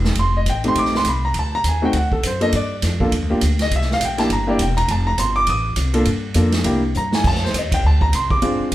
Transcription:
0.00 0.15 E1 medium
0.04 snare medium
0.15 0.45 F1 medium
0.15 kick soft
0.15 ride medium
0.19 0.36 C6 medium
0.37 0.47 D#5 medium
0.46 0.75 A1 medium
0.46 0.65 G5 medium
0.46 kick soft
0.46 hi-hat pedal soft
0.46 ride medium
0.64 1.03 A3 medium
0.64 1.03 C4 medium
0.64 1.03 D#4 medium
0.64 1.03 G4 medium
0.64 ride soft
0.68 0.77 C6 loud
0.75 1.04 A#1 medium
0.75 0.94 D6 medium
0.75 kick soft
0.75 ride medium
0.85 snare soft
0.95 1.07 C6 loud
0.95 snare soft
1.05 1.34 C2 medium
1.05 kick soft
1.05 hi-hat pedal soft
1.05 ride medium
1.09 1.25 B5 medium
1.25 1.35 A#5 medium
1.34 1.63 D2 medium
1.34 kick soft
1.34 ride medium
1.39 1.54 A5 medium
1.55 1.65 A#5 loud
1.64 1.93 D#2 medium
1.64 kick soft
1.64 hi-hat pedal soft
1.64 ride medium
1.69 1.84 G#5 medium
1.82 1.92 A3 medium
1.82 1.93 C4 medium
1.82 1.93 D#4 medium
1.82 1.93 F#4 medium
1.82 1.95 G5 medium
1.93 2.22 D2 medium
1.93 2.13 F#5 medium
1.93 kick soft
1.93 ride medium
2.12 2.23 A4 medium
2.12 kick soft
2.23 2.52 F#2 medium
2.23 2.43 C5 medium
2.23 kick soft
2.23 hi-hat pedal medium
2.23 ride medium
2.41 2.51 A#3 medium
2.41 2.52 D4 medium
2.41 2.51 F4 medium
2.41 2.51 A4 medium
2.41 2.53 D#5 loud
2.41 ride soft
2.52 2.81 G2 medium
2.52 2.98 D5 medium
2.52 kick soft
2.52 ride medium
2.82 3.11 F2 medium
2.82 kick soft
2.82 snare soft
2.82 hi-hat pedal medium
2.82 ride medium
3.00 3.11 A#3 medium
3.00 3.11 D4 medium
3.00 3.11 F4 medium
3.00 3.11 A4 medium
3.00 kick medium
3.12 3.22 D#2 medium
3.12 kick soft
3.12 ride medium
3.22 3.31 D2 medium
3.30 3.41 A#1 medium
3.30 3.40 A#3 medium
3.30 3.40 D4 medium
3.30 3.41 F4 medium
3.30 3.41 G4 medium
3.41 3.70 D2 medium
3.41 kick soft
3.41 hi-hat pedal soft
3.41 ride medium
3.59 3.72 D#5 medium
3.59 snare soft
3.59 ride soft
3.71 3.99 C2 medium
3.71 kick soft
3.71 ride medium
3.76 3.91 E5 medium
3.81 snare soft
3.91 4.02 F5 loud
3.91 snare soft
4.00 4.29 A#1 medium
4.00 kick soft
4.00 hi-hat pedal medium
4.00 ride medium
4.05 4.20 G5 medium
4.18 4.28 A#3 medium
4.18 4.28 D4 medium
4.18 4.29 E4 medium
4.18 4.29 G4 medium
4.18 4.30 A5 medium
4.18 snare soft
4.18 ride soft
4.30 4.58 G1 medium
4.30 4.48 A#5 medium
4.30 kick soft
4.30 ride medium
4.47 4.58 A#3 medium
4.47 4.58 D4 medium
4.47 4.58 E4 medium
4.47 4.58 G4 medium
4.47 4.60 D5 medium
4.59 4.87 E1 medium
4.59 4.78 G5 medium
4.59 kick soft
4.59 hi-hat pedal soft
4.59 ride medium
4.77 4.88 A#5 loud
4.77 ride soft
4.88 5.17 F1 medium
4.88 5.07 A5 medium
4.88 kick soft
4.88 ride medium
5.07 5.18 A#5 loud
5.18 5.46 G1 medium
5.18 5.36 C6 medium
5.18 kick soft
5.18 hi-hat pedal medium
5.18 ride medium
5.36 5.47 D6 loud
5.47 5.76 A1 medium
5.47 5.60 D#6 loud
5.47 kick soft
5.47 ride medium
5.76 6.05 C2 medium
5.76 kick soft
5.76 hi-hat pedal medium
5.76 ride medium
5.93 6.05 A#3 medium
5.93 6.05 D4 medium
5.93 6.05 F4 medium
5.93 6.05 A4 medium
5.93 ride soft
6.05 6.34 G2 medium
6.05 kick soft
6.05 ride medium
6.34 6.64 F2 medium
6.34 6.52 A#3 medium
6.34 6.52 D4 medium
6.34 6.52 F4 medium
6.34 6.52 A4 medium
6.34 kick soft
6.34 hi-hat pedal medium
6.34 ride medium
6.52 snare medium
6.52 ride soft
6.64 6.93 C2 medium
6.64 6.81 A#3 medium
6.64 6.81 D4 medium
6.64 6.81 E4 medium
6.64 6.81 G4 medium
6.64 kick soft
6.64 ride medium
6.94 7.23 G2 medium
6.94 7.13 A#5 medium
6.94 hi-hat pedal medium
7.12 7.25 G#5 loud
7.12 snare medium
7.24 7.53 F2 medium
7.24 7.43 A5 medium
7.24 kick medium
7.24 crash medium
7.35 snare soft
7.44 7.54 C5 medium
7.44 snare soft
7.54 7.82 D#2 medium
7.54 kick soft
7.54 hi-hat pedal medium
7.54 ride medium
7.58 7.73 D#5 medium
7.72 7.84 G5 medium
7.72 kick medium
7.72 ride medium
7.83 8.12 D2 medium
7.83 8.02 A5 medium
7.83 kick soft
8.01 8.13 A#5 medium
8.01 kick medium
8.13 8.41 C2 medium
8.13 8.31 C6 medium
8.13 kick soft
8.13 hi-hat pedal medium
8.13 ride medium
8.30 8.69 D6 medium
8.30 kick medium
8.42 8.59 A#1 medium
8.42 8.75 G#3 medium
8.42 8.75 C4 medium
8.42 8.75 D4 medium
8.42 8.75 F4 medium
8.42 kick soft
8.42 ride medium
8.59 muted upright bass stroke soft
8.72 8.75 C2 medium
8.72 kick soft
8.72 hi-hat pedal medium
8.72 ride medium

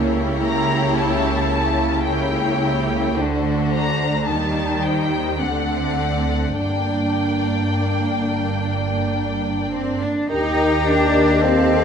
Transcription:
0.00 3.13 C#2 soft
0.00 3.13 C#3 soft
0.00 2.03 A#3 soft
0.00 2.05 E4 soft
0.00 2.06 G4 soft
0.00 2.06 C#5 soft
0.43 0.94 A#5 medium
0.98 2.07 A5 medium
2.06 3.15 A#3 soft
2.06 3.15 E4 soft
2.06 3.15 G4 soft
2.06 3.15 C#5 soft
2.06 3.14 G5 soft
3.17 4.25 D2 soft
3.17 4.25 D3 soft
3.17 4.27 A3 soft
3.17 4.28 D4 soft
3.17 4.28 F#4 soft
3.17 4.27 C5 soft
3.72 4.24 A#5 soft
4.27 5.41 D#2 soft
4.27 5.41 D#3 soft
4.27 5.41 G3 soft
4.27 5.41 D#4 soft
4.27 5.38 G4 soft
4.27 4.84 A#4 soft
4.27 4.84 A5 soft
4.83 5.40 C5 soft
4.83 5.40 G5 soft
5.40 6.59 D2 soft
5.40 6.59 D3 soft
5.40 6.59 A3 soft
5.40 6.59 C4 soft
5.40 6.57 D4 soft
5.40 6.58 D5 soft
5.40 6.59 F#5 soft
6.59 10.05 G1 soft
6.59 9.67 G2 soft
6.59 10.09 A#3 soft
6.59 10.05 D4 soft
6.59 10.06 D4 soft
6.59 10.05 D5 soft
6.59 9.67 G5 soft
9.71 9.99 C4 soft
10.01 10.30 D4 soft
10.29 11.84 D#2 soft
10.29 11.84 D#3 soft
10.29 10.85 D#4 medium
10.29 11.84 G4 soft
10.29 11.38 G4 soft
10.29 11.38 A#4 soft
10.29 11.84 D#5 soft
10.29 11.84 G5 soft
10.29 11.38 G5 soft
10.29 11.38 A#5 soft
10.87 11.42 D4 medium
11.41 11.84 C4 medium
11.41 11.84 A4 soft
11.41 11.84 C5 soft
11.41 11.84 F5 soft
11.41 11.84 A5 soft

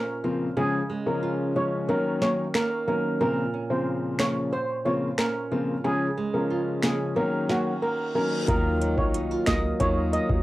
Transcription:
0.00 0.56 A#2 medium
0.00 1.55 C#4 medium
0.00 0.23 F4 medium
0.00 0.38 A#4 medium
0.00 0.64 C5 medium
0.24 0.46 C#3 medium
0.24 0.46 F3 medium
0.24 0.46 A#3 medium
0.24 0.46 C4 medium
0.24 0.64 F4 medium
0.57 0.79 C#3 medium
0.57 1.95 C#3 medium
0.57 0.79 F3 medium
0.57 0.79 G#3 medium
0.57 0.79 C#4 loud
0.57 0.68 G#4 loud
0.90 1.95 G#3 medium
1.06 1.52 C#3 medium
1.06 1.52 F3 medium
1.06 1.52 G#3 medium
1.06 1.52 C#4 medium
1.06 1.29 A#4 medium
1.23 1.95 F4 medium
1.56 1.86 C#3 medium
1.56 1.86 F3 medium
1.56 1.86 G#3 medium
1.56 2.21 C#4 medium
1.56 1.86 C#4 medium
1.56 1.79 C#5 medium
1.88 2.19 D#3 medium
1.88 3.27 D#3 medium
1.88 2.19 F#3 medium
1.88 2.19 A#3 medium
1.88 2.19 C#4 medium
1.88 2.00 A#4 medium
2.21 2.43 D#3 medium
2.21 2.43 F#3 medium
2.21 2.44 A#3 medium
2.21 2.87 C#4 medium
2.21 2.44 C#4 medium
2.21 2.33 C#5 medium
2.21 snare medium
2.54 4.56 A#3 medium
2.54 2.66 A#4 medium
2.54 finger snap medium
2.54 snare loud
2.88 3.18 D#3 medium
2.88 3.18 F#3 medium
2.88 3.18 A#3 medium
2.88 3.53 C#4 medium
2.88 3.18 C#4 medium
2.88 2.99 A#4 medium
3.20 5.84 A#2 medium
3.20 3.42 C#3 medium
3.20 3.42 F3 medium
3.20 3.42 A#3 medium
3.20 3.43 C4 loud
3.20 3.32 A#4 medium
3.54 5.18 C#4 medium
3.70 4.15 C#3 medium
3.70 4.16 F3 medium
3.70 4.16 A#3 medium
3.70 4.16 C4 medium
3.70 3.93 C5 medium
4.19 4.50 C#3 medium
4.19 4.50 F3 medium
4.19 4.50 A#3 medium
4.19 4.50 C#4 medium
4.19 4.85 F4 medium
4.19 4.42 C#5 medium
4.19 finger snap medium
4.19 snare loud
4.53 5.91 C5 medium
4.53 4.64 C5 medium
4.85 5.07 C#3 medium
4.85 5.07 F3 medium
4.85 5.07 A#3 medium
4.85 5.07 C4 medium
4.85 5.50 F4 medium
4.85 4.97 C#5 medium
5.18 6.83 C#4 medium
5.18 5.65 A#4 medium
5.18 finger snap medium
5.18 snare loud
5.51 5.73 C#3 medium
5.51 5.73 F3 medium
5.51 5.73 A#3 medium
5.51 5.73 C4 medium
5.51 5.91 F4 medium
5.84 6.06 C#3 medium
5.84 7.23 C#3 medium
5.84 6.06 F3 medium
5.84 6.06 G#3 medium
5.84 6.06 C#4 loud
5.84 5.96 G#4 loud
6.17 7.23 G#3 medium
6.34 6.79 C#3 medium
6.34 6.79 F3 medium
6.34 6.79 G#3 medium
6.34 6.80 C#4 medium
6.34 6.56 A#4 medium
6.50 7.23 F4 medium
6.83 7.14 C#3 medium
6.83 7.14 F3 medium
6.83 7.14 G#3 medium
6.83 7.23 C#4 medium
6.83 7.14 C#4 medium
6.83 7.06 G#4 medium
6.83 finger snap medium
6.83 snare loud
7.16 7.47 D#3 medium
7.16 8.48 D#3 medium
7.16 7.47 F#3 medium
7.16 7.47 A#3 medium
7.16 7.47 C#4 loud
7.16 7.27 A#4 medium
7.16 reverse cymbal medium
7.49 7.71 D#3 medium
7.49 7.71 F#3 medium
7.49 7.71 A#3 medium
7.49 8.14 C#4 medium
7.49 7.71 C#4 medium
7.49 7.60 F#4 medium
7.49 snare medium
7.82 8.81 A#3 medium
7.82 7.94 A#4 medium
8.15 8.45 D#3 medium
8.15 8.46 F#3 medium
8.15 8.46 A#3 medium
8.15 8.55 C#4 medium
8.15 8.46 C#4 medium
8.15 8.26 A#4 medium
8.48 8.99 D#2 loud
8.48 10.43 D#3 medium
8.48 8.94 F#3 medium
8.48 8.94 A#3 medium
8.48 8.94 D#4 medium
8.48 8.94 F4 loud
8.48 8.59 A#4 medium
8.48 kick loud
8.48 closed hi-hat medium
8.48 impact medium
8.81 9.79 F#3 medium
8.81 closed hi-hat medium
8.97 9.36 C2 loud
8.97 9.43 F#3 medium
8.97 9.43 A#3 medium
8.97 9.43 D#4 medium
8.97 9.43 F4 medium
8.97 9.20 C#5 medium
8.97 kick medium
9.14 9.31 D#4 medium
9.14 closed hi-hat medium
9.31 10.43 F4 medium
9.46 9.73 C#2 loud
9.46 9.77 F#3 medium
9.46 9.77 A#3 medium
9.46 10.13 A#3 medium
9.46 9.77 D#4 medium
9.46 9.78 F4 medium
9.46 9.69 D#5 medium
9.46 finger snap medium
9.46 kick loud
9.46 snare loud
9.46 closed hi-hat medium
9.80 10.18 D#2 loud
9.80 10.25 F#3 medium
9.80 10.43 F#3 medium
9.80 10.25 A#3 medium
9.80 10.26 D#4 medium
9.80 10.26 F4 loud
9.80 9.91 C#5 medium
9.80 kick medium
9.80 closed hi-hat medium
10.13 10.43 A#3 medium
10.13 10.24 D#5 medium
10.13 closed hi-hat medium
10.29 10.42 D#2 loud
10.29 10.43 F#3 medium
10.29 10.43 A#3 medium
10.29 10.43 D#4 medium
10.29 10.43 F4 medium
10.29 kick medium

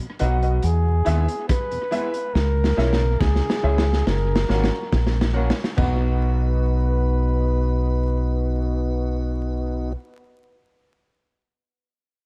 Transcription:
0.00 closed hi-hat medium
0.19 0.58 B1 medium
0.19 0.35 F#3 medium
0.19 0.28 B3 medium
0.19 0.35 B3 medium
0.19 0.28 D#4 medium
0.19 0.35 D#4 medium
0.19 0.39 F#4 medium
0.19 0.28 F#4 medium
0.19 0.66 F#4 medium
0.19 0.39 B4 medium
0.19 0.39 D#5 medium
0.19 0.39 F#5 loud
0.19 closed hi-hat medium
0.42 0.60 F#4 medium
0.42 0.60 B4 medium
0.42 0.60 D#5 medium
0.42 0.60 F#5 medium
0.42 closed hi-hat soft
0.62 1.01 E2 loud
0.62 1.48 G#4 loud
0.62 closed hi-hat medium
0.85 0.93 E2 medium
0.85 0.93 B2 medium
1.05 1.26 D#2 medium
1.05 1.21 G#3 medium
1.05 1.14 G#3 medium
1.05 1.14 B3 medium
1.05 1.21 B3 medium
1.05 1.24 E4 medium
1.05 1.14 E4 medium
1.05 1.21 E4 medium
1.05 1.25 G#4 medium
1.05 1.25 B4 medium
1.05 1.25 E5 loud
1.05 cross-stick medium
1.05 closed hi-hat medium
1.28 1.36 B3 medium
1.28 1.36 E4 medium
1.28 closed hi-hat medium
1.49 2.35 B4 loud
1.49 kick loud
1.49 cross-stick loud
1.49 closed hi-hat medium
1.71 1.79 E2 medium
1.71 1.79 B2 medium
1.71 closed hi-hat medium
1.91 2.07 G#3 medium
1.91 2.00 G#3 medium
1.91 2.07 B3 medium
1.91 2.00 B3 medium
1.91 2.10 E4 medium
1.91 2.07 E4 medium
1.91 2.00 E4 medium
1.91 2.10 G#4 medium
1.91 2.11 B4 medium
1.91 2.11 E5 loud
1.91 closed hi-hat medium
2.14 muted clean electric guitar stroke soft
2.14 closed hi-hat medium
2.34 2.73 C#2 loud
2.34 3.21 A#4 loud
2.34 snare medium
2.57 2.65 C#3 medium
2.64 snare medium
2.77 3.16 B1 loud
2.77 2.92 G#3 medium
2.77 2.86 G#3 medium
2.77 2.86 C#4 medium
2.77 2.93 C#4 loud
2.77 2.96 E4 medium
2.77 2.86 E4 medium
2.77 2.93 E4 medium
2.77 2.96 G#4 medium
2.77 2.97 C#5 medium
2.77 2.97 E5 loud
2.77 snare medium
2.93 snare medium
3.00 3.08 C#3 medium
3.20 3.40 C#2 loud
3.20 4.08 G#4 loud
3.20 kick loud
3.20 snare medium
3.36 snare medium
3.43 3.50 C#3 medium
3.50 snare medium
3.63 4.01 C#2 medium
3.63 3.71 G#3 medium
3.63 3.78 G#3 medium
3.63 3.72 C#4 medium
3.63 3.79 C#4 medium
3.63 3.82 E4 medium
3.63 3.72 E4 medium
3.63 3.79 E4 medium
3.63 3.82 G#4 medium
3.63 3.82 C#5 medium
3.63 3.83 E5 loud
3.78 snare medium
3.93 snare medium
4.06 4.44 F#1 loud
4.06 5.35 A#4 loud
4.06 snare medium
4.28 4.36 F#2 medium
4.28 4.36 C#3 medium
4.36 snare medium
4.48 4.69 G#1 medium
4.48 4.64 A#3 medium
4.48 4.57 A#3 medium
4.48 4.57 C#4 medium
4.48 4.65 C#4 medium
4.48 4.68 F#4 loud
4.48 4.58 F#4 medium
4.48 4.65 F#4 loud
4.48 4.68 A#4 medium
4.48 4.68 C#5 medium
4.48 4.69 F#5 loud
4.48 snare medium
4.64 snare medium
4.71 4.79 C#4 medium
4.71 4.79 F#4 medium
4.92 5.50 A#1 medium
4.92 kick loud
4.92 snare medium
5.07 snare medium
5.14 5.22 F#2 medium
5.14 5.22 C#3 medium
5.21 snare medium
5.33 5.43 A#3 medium
5.33 5.50 A#3 medium
5.33 5.43 C#4 medium
5.33 5.50 C#4 medium
5.33 5.53 F#4 medium
5.33 5.43 F#4 medium
5.33 5.51 F#4 medium
5.33 5.54 A#4 medium
5.33 5.54 C#5 medium
5.33 5.54 F#5 loud
5.50 snare loud
5.58 muted clean electric guitar stroke soft
5.64 snare medium
5.76 9.94 B1 loud
5.76 9.96 B3 medium
5.76 9.92 B3 medium
5.76 9.92 D#4 medium
5.76 9.99 D#4 medium
5.76 9.92 F#4 medium
5.76 9.93 F#4 medium
5.76 9.93 B4 medium
5.76 9.95 B4 loud
5.76 9.93 D#5 medium
5.76 9.93 F#5 medium
5.76 kick loud
5.76 floor tom loud
5.76 splash medium
5.81 10.01 F#4 medium

